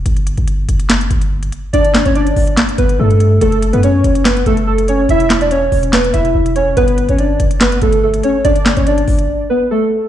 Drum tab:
HH |xxxxx-xxxxxx-xx-|xxxxxxoxxxxx-xx-|xxxxx-xxxxxx-xx-|xxxxx-oxxxxx-xx-|
CP |--------x-------|--x-----x-------|--------x-------|--x-----x-------|
SD |--------o-------|--o-----o-------|--------o-------|--o-----o-------|

HH |xxxxx-xxxxxx-xx-|xxxxxxox--------|
CP |--------x-------|--x-------------|
SD |--------o-------|--o-------------|